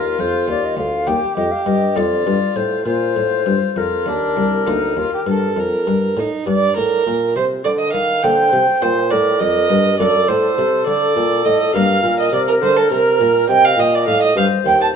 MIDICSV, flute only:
0, 0, Header, 1, 2, 480
1, 0, Start_track
1, 0, Key_signature, -2, "major"
1, 0, Tempo, 587084
1, 1361, Tempo, 600601
1, 2320, Time_signature, 12, 3, 24, 8
1, 5208, Key_signature, -2, "minor"
1, 5681, Tempo, 583090
1, 12174, End_track
2, 0, Start_track
2, 0, Title_t, "Flute"
2, 0, Program_c, 0, 73
2, 0, Note_on_c, 0, 70, 72
2, 166, Note_on_c, 0, 72, 71
2, 178, Note_off_c, 0, 70, 0
2, 401, Note_off_c, 0, 72, 0
2, 406, Note_on_c, 0, 74, 78
2, 534, Note_on_c, 0, 75, 70
2, 546, Note_off_c, 0, 74, 0
2, 636, Note_off_c, 0, 75, 0
2, 641, Note_on_c, 0, 77, 72
2, 879, Note_on_c, 0, 79, 78
2, 891, Note_off_c, 0, 77, 0
2, 1111, Note_off_c, 0, 79, 0
2, 1116, Note_on_c, 0, 75, 74
2, 1240, Note_on_c, 0, 77, 74
2, 1252, Note_off_c, 0, 75, 0
2, 1345, Note_off_c, 0, 77, 0
2, 1350, Note_on_c, 0, 75, 70
2, 1601, Note_on_c, 0, 74, 76
2, 1613, Note_off_c, 0, 75, 0
2, 2078, Note_on_c, 0, 72, 70
2, 2090, Note_off_c, 0, 74, 0
2, 2315, Note_off_c, 0, 72, 0
2, 2320, Note_on_c, 0, 72, 75
2, 3047, Note_on_c, 0, 70, 58
2, 3059, Note_off_c, 0, 72, 0
2, 4971, Note_off_c, 0, 70, 0
2, 6640, Note_on_c, 0, 72, 78
2, 7361, Note_on_c, 0, 70, 63
2, 7374, Note_off_c, 0, 72, 0
2, 8081, Note_off_c, 0, 70, 0
2, 8086, Note_on_c, 0, 69, 76
2, 9533, Note_on_c, 0, 70, 78
2, 9545, Note_off_c, 0, 69, 0
2, 10957, Note_off_c, 0, 70, 0
2, 10962, Note_on_c, 0, 75, 84
2, 11667, Note_off_c, 0, 75, 0
2, 11683, Note_on_c, 0, 72, 79
2, 12163, Note_off_c, 0, 72, 0
2, 12174, End_track
0, 0, End_of_file